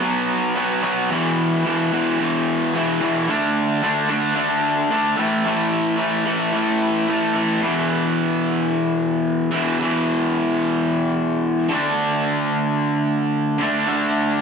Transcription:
0.01 0.54 B2 medium
0.01 0.55 F#3 loud
0.01 0.56 B3 loud
0.56 0.81 B2 medium
0.56 0.82 F#3 medium
0.56 0.82 B3 loud
0.82 1.08 B2 medium
0.82 1.08 F#3 medium
0.82 1.09 B3 loud
1.09 1.63 E2 loud
1.09 1.64 B2 medium
1.09 1.64 E3 medium
1.64 1.91 E2 medium
1.64 1.91 B2 medium
1.64 1.92 E3 loud
1.92 2.18 E2 medium
1.92 2.19 B2 medium
1.92 2.20 E3 loud
2.20 2.72 E2 loud
2.20 2.73 B2 loud
2.20 2.74 E3 loud
2.74 2.99 E2 medium
2.74 3.00 B2 medium
2.74 3.01 E3 loud
3.00 3.26 E2 medium
3.00 3.26 B2 medium
3.00 3.26 E3 medium
3.28 3.81 D3 medium
3.28 3.83 A3 loud
3.28 3.82 D4 loud
3.82 4.08 D3 medium
3.82 4.09 A3 loud
3.82 4.09 D4 loud
4.09 4.34 D3 medium
4.09 4.34 A3 medium
4.09 4.35 D4 medium
4.35 4.90 D3 loud
4.35 4.90 A3 loud
4.35 4.91 D4 loud
4.91 5.16 D3 medium
4.91 5.16 A3 medium
4.91 5.17 D4 loud
5.17 5.43 A2 loud
5.17 5.44 E3 loud
5.17 5.45 A3 medium
5.45 5.96 A2 medium
5.45 5.98 E3 loud
5.45 5.99 A3 medium
5.98 6.24 A2 medium
5.98 6.25 E3 loud
5.98 6.25 A3 medium
6.26 6.51 A2 medium
6.26 6.52 E3 medium
6.26 6.53 A3 medium
6.52 7.07 A2 medium
6.52 7.07 E3 loud
6.52 7.08 A3 loud
7.08 7.33 A2 medium
7.08 7.33 E3 medium
7.08 7.34 A3 medium
7.34 7.59 A2 medium
7.34 7.60 E3 medium
7.34 7.60 A3 medium
7.59 9.49 E2 medium
7.59 9.50 B2 medium
7.64 9.50 E3 medium
9.51 9.78 E2 medium
9.51 9.78 B2 medium
9.51 9.77 E3 medium
9.79 11.68 E2 medium
9.79 11.69 B2 medium
9.79 11.70 E3 medium
11.69 13.57 D3 medium
11.69 13.59 A3 medium
11.69 13.62 D4 medium
13.58 13.85 D3 medium
13.58 13.86 A3 medium
13.63 13.89 D4 medium
13.86 14.41 D3 medium
13.86 14.41 A3 medium
13.86 14.41 D4 loud

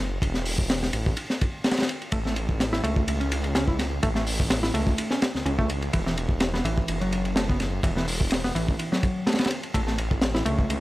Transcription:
0.00 0.19 F#1 medium
0.22 0.90 E1 loud
0.22 kick loud
0.22 ride medium
0.34 snare soft
0.45 open hi-hat medium
0.58 kick loud
0.70 snare loud
0.70 ride medium
0.82 snare medium
0.93 1.13 A1 loud
0.93 ride medium
1.06 kick medium
1.17 ride medium
1.30 snare soft
1.41 kick loud
1.41 ride medium
1.64 snare medium
1.64 ride medium
1.71 snare medium
1.71 ride medium
1.77 snare medium
1.77 ride medium
1.82 snare medium
1.82 ride medium
1.89 ride medium
2.02 ride soft
2.12 2.81 A1 loud
2.12 2.18 A3 medium
2.12 kick loud
2.12 ride medium
2.25 2.33 A3 medium
2.25 snare soft
2.36 ride medium
2.49 kick medium
2.60 snare loud
2.60 ride medium
2.73 2.81 E4 medium
2.73 snare medium
2.84 3.03 C#2 loud
2.84 3.19 A3 loud
2.84 ride medium
2.96 kick loud
3.07 4.00 C#2 medium
3.07 ride medium
3.20 3.54 C#4 medium
3.20 ride soft
3.32 ride medium
3.44 ride soft
3.55 3.65 C#4 medium
3.55 snare loud
3.55 ride medium
3.68 3.76 E4 medium
3.68 kick medium
3.79 snare soft
3.79 ride medium
4.03 4.71 A1 loud
4.03 4.09 A3 loud
4.03 kick loud
4.03 ride medium
4.15 4.24 A3 medium
4.15 snare soft
4.27 open hi-hat medium
4.40 kick loud
4.50 snare loud
4.50 ride medium
4.63 4.71 E4 medium
4.63 snare medium
4.74 4.94 C#2 loud
4.74 5.10 A3 loud
4.74 ride medium
4.87 kick medium
4.98 ride medium
5.11 5.21 C#4 medium
5.11 snare medium
5.22 snare loud
5.22 ride medium
5.35 5.43 C#2 soft
5.35 snare soft
5.46 5.90 C#2 loud
5.46 5.51 C#4 medium
5.46 ride medium
5.59 5.68 A3 medium
5.59 kick medium
5.70 ride medium
5.82 ride soft
5.93 6.62 E1 loud
5.93 5.99 E3 loud
5.93 kick loud
5.93 ride medium
6.06 6.14 E3 medium
6.06 snare soft
6.17 ride medium
6.29 kick loud
6.40 snare loud
6.40 ride medium
6.54 6.62 B3 medium
6.54 snare medium
6.65 6.84 A1 loud
6.65 7.00 E3 loud
6.65 ride medium
6.78 kick loud
6.88 7.80 F#1 medium
6.88 ride medium
7.01 7.35 F#3 medium
7.01 ride soft
7.12 ride medium
7.25 ride soft
7.36 7.46 A3 medium
7.36 snare loud
7.36 ride medium
7.49 7.57 B3 medium
7.49 kick loud
7.60 snare soft
7.60 ride medium
7.83 8.52 E1 loud
7.83 7.89 E3 loud
7.83 kick loud
7.83 ride medium
7.97 8.05 E3 medium
7.97 snare soft
8.08 open hi-hat medium
8.21 kick medium
8.30 snare loud
8.30 ride medium
8.44 8.52 B3 medium
8.44 snare soft
8.55 8.75 A1 loud
8.55 8.91 E3 loud
8.55 ride medium
8.68 kick medium
8.79 ride medium
8.92 9.26 F#3 medium
8.92 snare medium
9.03 kick loud
9.03 ride medium
9.27 9.36 A3 medium
9.27 snare medium
9.27 ride medium
9.32 snare medium
9.32 ride medium
9.39 9.48 B3 medium
9.39 snare medium
9.39 ride medium
9.44 snare medium
9.44 ride medium
9.51 ride medium
9.63 ride soft
9.74 10.42 A1 loud
9.74 9.80 A3 loud
9.74 kick loud
9.74 ride loud
9.87 9.95 A3 medium
9.87 snare soft
9.98 ride medium
10.11 kick loud
10.22 snare loud
10.22 ride medium
10.35 10.43 E4 medium
10.35 snare medium
10.45 10.65 C#2 loud
10.45 10.80 A3 loud
10.45 ride medium
10.59 kick medium
10.69 10.80 C#2 medium
10.69 ride medium

